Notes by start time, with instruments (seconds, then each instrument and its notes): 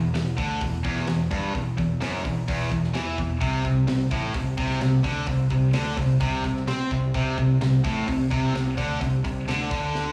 Already playing: picked electric bass E1, distorted electric guitar E2
0.14 picked electric bass E1, distorted electric guitar E2, snare, open hi-hat
0.38 picked electric bass D2, distorted electric guitar D3, kick, open hi-hat
0.61 picked electric bass E1, distorted electric guitar E2, kick, open hi-hat
0.84 picked electric bass E1, distorted electric guitar E2, kick, open hi-hat
0.97 snare
1.07 picked electric bass E1, distorted electric guitar E2, snare, open hi-hat
1.31 picked electric bass G1, distorted electric guitar G2, kick, open hi-hat
1.55 picked electric bass E1, distorted electric guitar E2, kick, open hi-hat
1.78 picked electric bass E1, distorted electric guitar E2, kick, open hi-hat
2.01 picked electric bass F#1, distorted electric guitar F#2, snare, open hi-hat
2.24 picked electric bass E1, distorted electric guitar E2, kick, open hi-hat
2.48 picked electric bass E1, distorted electric guitar E2, kick, open hi-hat
2.71 picked electric bass E1, distorted electric guitar E2, kick, open hi-hat
2.84 snare
2.94 picked electric bass E2, distorted electric guitar E3, snare, open hi-hat
3.18 picked electric bass E1, distorted electric guitar E2, kick, open hi-hat
3.41 picked electric bass C2, distorted electric guitar C3, kick, open hi-hat
3.64 picked electric bass C2, distorted electric guitar C3, kick, open hi-hat
3.87 picked electric bass C2, distorted electric guitar C3, snare, open hi-hat
4.11 picked electric bass A1, distorted electric guitar A2, kick, open hi-hat
4.34 picked electric bass C2, distorted electric guitar C3, kick, open hi-hat
4.58 picked electric bass C2, distorted electric guitar C3, kick, open hi-hat
4.71 snare
4.81 picked electric bass C2, distorted electric guitar C3, snare, open hi-hat
5.04 picked electric bass D2, distorted electric guitar D3, kick, open hi-hat
5.27 picked electric bass C2, distorted electric guitar C3, kick, open hi-hat
5.50 picked electric bass C2, distorted electric guitar C3, kick, open hi-hat
5.73 picked electric bass D2, distorted electric guitar D3, snare, open hi-hat
5.97 picked electric bass C2, distorted electric guitar C3, kick, open hi-hat
6.20 picked electric bass C2, distorted electric guitar C3, kick, open hi-hat
6.44 picked electric bass C2, distorted electric guitar C3, kick, open hi-hat
6.57 snare
6.67 picked electric bass C3, distorted electric guitar C4, snare, open hi-hat
6.91 picked electric bass C2, distorted electric guitar C3, kick, snare, open hi-hat
7.14 picked electric bass C2, distorted electric guitar C3, kick, open hi-hat
7.38 picked electric bass C2, distorted electric guitar C3, kick, open hi-hat
7.60 picked electric bass C2, distorted electric guitar C3, snare, open hi-hat
7.84 picked electric bass A1, distorted electric guitar A2, kick, open hi-hat
8.07 picked electric bass C2, distorted electric guitar C3, kick, open hi-hat
8.31 picked electric bass C2, distorted electric guitar C3, kick, open hi-hat
8.54 picked electric bass C2, distorted electric guitar C3, snare, open hi-hat
8.77 picked electric bass D2, distorted electric guitar D3, kick, snare, open hi-hat
9.01 picked electric bass C2, distorted electric guitar C3, kick, open hi-hat
9.25 picked electric bass C2, distorted electric guitar C3, kick, open hi-hat
9.48 picked electric bass D2, distorted electric guitar D3, snare, open hi-hat
9.71 picked electric bass D2, distorted electric guitar D3, kick, open hi-hat
9.95 snare